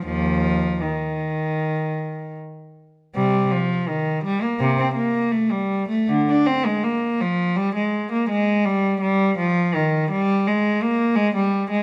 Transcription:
\new Staff \with { instrumentName = "Cello" } { \clef bass \time 4/4 \key ees \major \tempo 4 = 82 <ees, f>4 ees2 r4 | <c g>8 f8 ees8 g16 bes16 c16 c'16 bes8 a16 g8 a16 | d16 d'16 c'16 aes16 bes8 f8 g16 aes8 bes16 aes8 g8 | g8 f8 ees8 g8 aes8 bes8 aes16 g8 aes16 | }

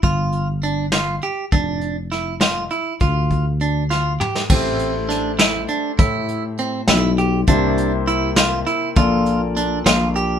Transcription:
<<
  \new Staff \with { instrumentName = "Clean electric guitar" } { \time 5/8 \key a \phrygian \tempo 4 = 101 f'4 d'8 f'8 g'8 | d'4 e'8 f'8 e'8 | f'4 d'8 f'8 g'8 | c'4 d'8 e'8 d'8 |
e'4 c'8 e'8 g'8 | d'4 e'8 f'8 e'8 | f'4 d'8 f'8 g'8 | }
  \new Staff \with { instrumentName = "Grand piano" } { \time 5/8 \key a \phrygian r2 r8 | r2 r8 | r2 r8 | <a e' g' c''>2~ <a e' g' c''>8~ |
<a e' g' c''>2~ <a e' g' c''>8 | <c bes e' c''>2~ <c bes e' c''>8 | <bes, bes a' d''>2~ <bes, bes a' d''>8 | }
  \new Staff \with { instrumentName = "Fretless electric bass" } { \clef bass \time 5/8 \key a \phrygian g,,2 r8 | f,,2 r8 | d,2 r8 | a,,2 r8 |
a,4. b,,4 | c,2 r8 | bes,,4. bes,,4 | }
  \new DrumStaff \with { instrumentName = "Drums" } \drummode { \time 5/8 <hh bd>8 hh8 hh8 <hh sn>8 hh8 | <hh bd>8 hh8 <hh sn>8 <hh sn>8 hh8 | <hh bd>8 <hh bd>8 hh8 sn8 toml16 sn16 | <cymc bd>8 hh8 <hh sn>8 <hh sn>8 hh8 |
<hh bd>8 hh8 hh8 <hh sn>8 hh8 | <hh bd>8 hh8 hh8 <hh sn>8 hh8 | <hh bd>8 hh8 hh8 <hh sn>8 hh8 | }
>>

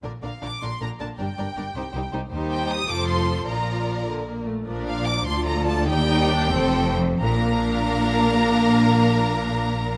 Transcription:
<<
  \new Staff \with { instrumentName = "Violin section" } { \time 6/8 \key bes \major \tempo 4. = 100 r8 f''8 d'''8 c'''8 bes''8 a''8 | g''2~ g''8 r8 | r8 g''8 ees'''8 d'''8 c'''4 | bes''4. r4. |
r8 f''8 d'''8 c'''8 bes''8 a''8 | g''2~ g''8 r8 | bes''2.~ | bes''2. | }
  \new Staff \with { instrumentName = "Violin section" } { \time 6/8 \key bes \major << { d''8 d''8 d''8 d''8 d''8 d''8 | d''8 d''8 d''8 c''8 c''8 c''8 | c''4. c''4. | d''2~ d''8 r8 |
d''4. d''4.~ | d''4. c''4 r8 | f''2.~ | f''2. | } \\ { bes'8 bes'8 bes'8 bes'8 bes'8 bes'8 | bes'8 bes'8 bes'8 g'8 g'8 g'8 | g'4. a'4. | bes'2~ bes'8 r8 |
bes'4. a'4. | g'4. a'4 r8 | bes'2.~ | bes'2. | } >> }
  \new Staff \with { instrumentName = "Viola section" } { \time 6/8 \key bes \major << { d'8 d'8 d'8 d'8 d'8 d'8 | d'8 d'8 d'8 ees'8 ees'8 ees'8 | ees'4. f'4. | f'4. d8 bes8 a8 |
d'4. f'4. | ees'8 ees'8 d'8 c'4 r8 | d'2.~ | d'2. | } \\ { d8 d8 d8 d8 d8 d8 | g8 g8 g8 g8 g8 g8 | g4. f4. | f4. r4. |
f2. | g4. c'4 r8 | bes2.~ | bes2. | } >> }
  \new Staff \with { instrumentName = "Cello section" } { \clef bass \time 6/8 \key bes \major bes,8 bes,8 bes,8 bes,8 bes,8 bes,8 | g,8 g,8 g,8 c,8 c,8 c,8 | ees,4. f,4. | bes,2~ bes,8 r8 |
bes,4. d,4. | ees,4. f,4. | bes,2.~ | bes,2. | }
  \new Staff \with { instrumentName = "Double bass section" } { \clef bass \time 6/8 \key bes \major bes,,8 bes,,8 bes,,8 bes,,8 bes,,8 bes,,8 | g,,8 g,,8 g,,8 c,8 c,8 c,8 | ees,4. f,,4. | bes,,2~ bes,,8 r8 |
bes,,4. d,4. | ees,4. f,,4. | bes,,2.~ | bes,,2. | }
>>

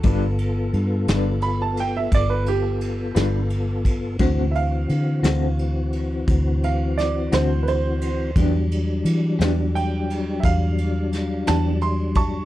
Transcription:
<<
  \new Staff \with { instrumentName = "Upright piano" } { \time 12/8 \key d \mixolydian \tempo 4. = 58 a'4. r8 b''16 a''16 g''16 e''16 d''16 b'16 g'2 r8 | r8 <e'' f''>2. f''8 d''8 c''8 <b' c''>4 | r2 g''4 <e'' f''>4. a''8 c'''8 <a'' cis'''>8 | }
  \new Staff \with { instrumentName = "Clean electric guitar" } { \time 12/8 \key d \mixolydian <g d' f' b'>8 r4 <g d' f' b'>8 r2 r8 <g d' f' b'>8 r4 | <d a c' fis'>8 r4 <d a c' fis'>8 r2 r8 <d a c' fis'>8 r4 | <e b d' g'>8 r4 <e b d' g'>8 r2 r8 <e b d' g'>8 r4 | }
  \new Staff \with { instrumentName = "Tonewheel organ" } { \time 12/8 \key d \mixolydian <b f' a'>1. | <e c' fis'>1. | <fis g d'>1. | }
  \new Staff \with { instrumentName = "Fingered electric bass" } { \clef bass \time 12/8 \key d \mixolydian g,,4 g,8 g,,4. g,,4. g,,4. | d,4 d8 d,4. d,4. d,4. | e,4 e8 e,4. e,4. e,4. | }
  \new DrumStaff \with { instrumentName = "Drums" } \drummode { \time 12/8 <bd cymr>8 cymr8 cymr8 <cymr sn>8 cymr8 cymr8 <bd cymr>8 cymr8 cymr8 <cymr sn>8 cymr8 <bd cymr>8 | <bd cymr>8 cymr8 cymr8 <cymr sn>8 cymr8 cymr8 <bd cymr>8 cymr8 <cymr sn>8 <cymr sn>8 cymr8 cymr8 | <bd cymr>8 cymr8 cymr8 <cymr sn>8 cymr8 cymr8 <bd cymr>8 cymr8 <cymr sn>8 <cymr sn>8 cymr8 <bd cymr>8 | }
>>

